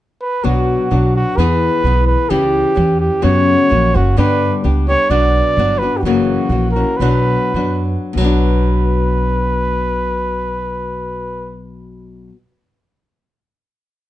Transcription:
0.22 B4
0.44 B1 B2 F#3 B3 D4 F#4
0.91 B1 F#3 B3 D4 F#4
1.16 F#4
1.37 E2 E3 B3 E4 G#4 B4
1.84 B1 E3 B3 E4 G#4
2.06 B4
2.30 C#2 C#3 E3 C#4 E4 G4
2.75 E2 E3 C#4 E4 G4
3.00 G4
3.22 F#2 C#3 F#3 B3 C#4 F#4 C#5
3.70 A#1 F#3 A#3 C#4 F#4
3.94 F#1 F#3 A#3 C#4 F#4
4.17 G2 D3 G3 B3 D4 G4 B4
4.64 C#2 G3 B3 D4 G4
4.88 G3 B3 D4 G4 C#5
5.10 B1 B2 F#3 B3 D4 F#4 D5
5.57 G1 F#3 B3 D4 F#4
5.79 F#4 B4
5.83 B3 D4
5.97 F#4 G4
6.03 F#1 F#2 C#3 E3 C#4 F#4
6.07 A#3
6.49 A#1 E3 A#3 C#4 F#4
6.71 A#4
6.76 E3 A#3 C#4 F#4
6.97 B1 B2 B4
7.01 F#3 B3 D4 F#4
7.54 F#2 F#3 B3 D4 F#4
8.13 B1 B2 B4
8.17 F#3 B3
8.24 D4 F#4

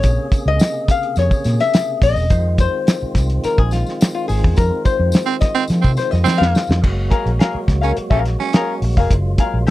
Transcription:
Already playing: C3 C#3 A#3 G#4 C#5
0.03 A#1, kick, closed hi-hat, tambourine
0.32 kick, closed hi-hat, tambourine
0.46 C#2 D#5
0.59 snare, closed hi-hat, tambourine
0.88 F5, kick, closed hi-hat, tambourine
1.03 closed hi-hat
1.16 F2 C#5, snare, closed hi-hat, tambourine
1.31 kick, tambourine
1.44 A#2, snare, closed hi-hat, tambourine
1.60 E5, snare, tambourine
1.74 snare, closed hi-hat, tambourine
2.02 A#1 D#5, kick, open hi-hat, tambourine
2.16 E1, tambourine
2.30 F2 D#3 G#3 C4 F4, kick, closed hi-hat, tambourine
2.58 C5, kick, closed hi-hat, tambourine
2.87 snare, closed hi-hat, tambourine
3.03 muted fingered electric bass stroke
3.15 C2, kick, snare, closed hi-hat, tambourine
3.30 closed hi-hat
3.44 A#4, muted fingered electric bass stroke, snare, closed hi-hat, tambourine
3.58 A#1 G#4, kick
3.71 F4, snare, closed hi-hat, tambourine
3.86 snare, tambourine
4.01 snare, closed hi-hat, tambourine
4.15 F4
4.28 G#1 G#4, open hi-hat, tambourine
4.44 E2, kick
4.56 F2 A#4, kick, closed hi-hat, tambourine
4.85 C5, kick, closed hi-hat, tambourine
4.99 F2
5.12 snare, closed hi-hat, tambourine
5.26 C4
5.41 D#5, kick, snare, closed hi-hat, tambourine
5.55 C4, closed hi-hat
5.68 F3, snare, closed hi-hat, tambourine
5.81 C3 C4, kick, tambourine
5.97 C5, snare, closed hi-hat, tambourine
6.11 F2 D#5, snare, tambourine
6.24 F3 C4, snare, tambourine
6.38 F2 F5, snare
6.55 snare, tambourine
6.67 F2, snare, tambourine
6.81 F#1 F#3 G#3 A#3 F#4, kick, crash
7.10 G#4 A#4 F5, kick, closed hi-hat
7.26 A#1, closed hi-hat
7.39 G#4 A#4 F5, snare, closed hi-hat
7.55 muted fingered electric bass stroke
7.68 C#2, muted hollow-body jazz guitar stroke, kick, snare, closed hi-hat
7.81 C#4 G#4 A#4 F5, closed hi-hat
7.97 muted hollow-body jazz guitar stroke, muted fingered electric bass stroke, closed hi-hat
8.10 A#1 C#4 G#4 A#4 F5, kick
8.24 muted hollow-body jazz guitar stroke, snare, closed hi-hat
8.39 C#4, muted hollow-body jazz guitar stroke, snare
8.53 G#4 A#4 F5, snare, closed hi-hat
8.82 A#1, muted hollow-body jazz guitar stroke, open hi-hat
8.97 F1 G#4 A#4 F5, kick
9.09 F#1 F4, kick, closed hi-hat
9.38 G#4 A#4 F5, kick, closed hi-hat
9.54 A#1
9.67 G#4

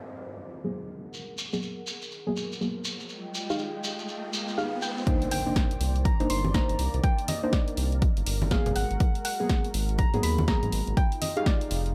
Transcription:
Already playing: D#3 A#3 C4 D#4 C5 D#5 D6, downlifter
0.64 F#3 A#3 B3 G#4
0.89 G#4 A#4 F#5
1.13 riser, shekere
1.38 shekere
1.53 F#3 A#3 B3 G#4, shekere
1.62 shekere
1.87 shekere
2.02 shekere
2.12 shekere
2.27 F#3 A#3 B3 G#4
2.37 shekere
2.52 shekere
2.61 F#3 A#3 B3 G#4, shekere
2.85 shekere
3.00 shekere
3.09 G#3 F4 D#5 G5, shekere
3.34 shekere
3.50 D#4 G4 G#4 F5, shekere
3.59 shekere
3.84 shekere
3.99 shekere
4.09 shekere
4.33 shekere
4.48 shekere
4.58 D#4 G4 G#4 F5, shekere
4.82 G5, shekere
4.97 shekere
5.07 D#3 A#3 D4 D#4 C5 D5, kick, closed hi-hat, impact
5.22 closed hi-hat
5.31 G5, open hi-hat
5.46 A#3 D4 D#4 C5
5.56 kick, snare, closed hi-hat
5.71 closed hi-hat
5.81 C2, open hi-hat
5.96 closed hi-hat
6.05 A#5, kick, closed hi-hat, high conga
6.20 G1 A#3 D4 D#4 C5, closed hi-hat
6.30 G1 C6, open hi-hat
6.44 high conga
6.54 A#3 D4 D#4 C5 A#5, kick, snare, closed hi-hat
6.69 G1, closed hi-hat, high conga
6.79 C2, open hi-hat
6.94 C2, closed hi-hat
7.04 A#4 G5, kick, closed hi-hat
7.19 closed hi-hat
7.28 D#5, open hi-hat, high conga
7.43 A#3 D4 D#4 C5
7.53 D5, kick, snare, closed hi-hat
7.68 closed hi-hat
7.77 C2, open hi-hat
7.92 closed hi-hat
8.02 kick, closed hi-hat
8.17 G1, closed hi-hat
8.27 G1, open hi-hat
8.42 high conga
8.51 F#3 A#3 B3 G#4 F5, kick, snare, closed hi-hat
8.66 G1, closed hi-hat, low conga
8.76 G#1 G#3 F#4 F#5, open hi-hat
8.91 G#1, closed hi-hat
9.00 kick, closed hi-hat
9.15 closed hi-hat
9.25 F#5, open hi-hat
9.40 F#3 A#3 B3 G#4
9.49 kick, snare, closed hi-hat
9.64 closed hi-hat
9.74 G#1, open hi-hat
9.89 closed hi-hat
9.98 A#5, kick, closed hi-hat, high conga
10.14 G#2 F#3 A#3 B3 G#4, closed hi-hat
10.23 D#2 B5, open hi-hat
10.38 high conga
10.48 F#3 A#3 B3 G#4 A#5, kick, snare, closed hi-hat
10.63 G#2, closed hi-hat, high conga
10.72 G#1, open hi-hat
10.87 G#1, closed hi-hat
10.97 D#4 F4 G5, kick, closed hi-hat
11.12 closed hi-hat
11.22 D#5, open hi-hat, high conga
11.36 D#4 G4 G#4 F5, closed hi-hat
11.46 D5, kick, snare, closed hi-hat
11.61 closed hi-hat
11.71 F1, open hi-hat
11.86 closed hi-hat

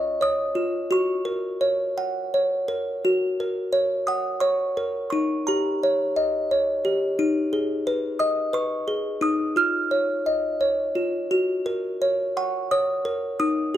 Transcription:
Already playing: C#4 F4 C#5 D#5 C#6
0.21 C#5 D#6
0.55 F4
0.91 F#4 C#6
1.25 A#4
1.61 C#5
1.98 F#5
2.34 C#5
2.68 A#4
3.05 F#4
3.40 A#4
3.73 C#5
4.07 F#5 D#6
4.40 C#5 C#6
4.77 A#4
5.10 D#4 C#6
5.47 G4 A#5
5.83 C#5
6.16 D#5
6.51 C#5
6.85 G4
7.19 D#4
7.53 G#4
7.87 B4
8.19 D#5 D#6
8.53 B4 C#6
8.88 G#4
9.21 D#4 D#6
9.56 F4 F6
9.91 C#5
10.26 D#5
10.61 C#5
10.95 F4
11.31 F#4
11.66 A#4
12.02 C#5
12.37 F#5 C#6
12.71 C#5 D#6
13.05 A#4
13.40 D#4 D#6

